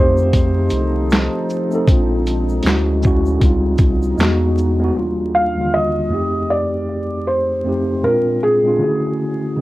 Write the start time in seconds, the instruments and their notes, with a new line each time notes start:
Already playing: analog synth bass F2, ambient pad F3 D#4 A4, tine electric piano A3 C4 D#4, felt piano C5
0.00 tine electric piano G4
0.17 shaker
0.33 kick, closed hi-hat, shaker
0.69 analog synth bass C2, closed hi-hat, shaker
1.10 snare, clap, closed hi-hat, shaker
1.50 shaker
1.70 tine electric piano A3 C4 D#4, shaker
1.75 tine electric piano A4
1.87 analog synth bass A#1, tine electric piano G#3 C4 D4, kick, closed hi-hat, shaker
1.92 tine electric piano F4
2.26 closed hi-hat, shaker
2.49 shaker
2.63 analog synth bass D2, tine electric piano G#3 C#4, closed hi-hat, shaker
2.67 tine electric piano E4 F#4, snare, clap
3.02 tine electric piano G#3 C#4, shaker
3.04 tine electric piano E4 F#4, kick, shaker
3.25 shaker
3.40 analog synth bass C#2, tine electric piano G3 C4 D#4, ambient pad D#4, kick, closed hi-hat, shaker
3.45 tine electric piano F4
3.78 analog synth bass C2, kick, closed hi-hat, shaker
4.03 shaker
4.18 analog synth bass E2, tine electric piano G#3 B3 D#4, snare, clap, closed hi-hat, shaker
4.23 tine electric piano F#4
4.58 shaker
4.79 tine electric piano G#3 B3 D#4
4.84 tine electric piano F#4
4.93 tine electric piano D#2 G3 A#3 D4
4.98 tine electric piano F4
5.35 felt piano F5
5.55 tine electric piano D#2 D3 G3 A#3
5.61 tine electric piano F4
5.74 felt piano D#5
6.09 tine electric piano F2 A3 C4 D#4
6.14 tine electric piano G4
6.50 felt piano D5
7.27 felt piano C5
7.63 tine electric piano F2 A3 C4 D#4
7.68 tine electric piano G4
8.03 tine electric piano A#2 G#3 C4 D4, felt piano A#4
8.08 tine electric piano F4
8.43 felt piano G#4
8.62 tine electric piano A#2 G#3 C4 D4
8.67 tine electric piano F4
8.79 tine electric piano D3 A3 C#4 E4
8.83 tine electric piano F#4 G#4
9.56 tine electric piano C#3 G#3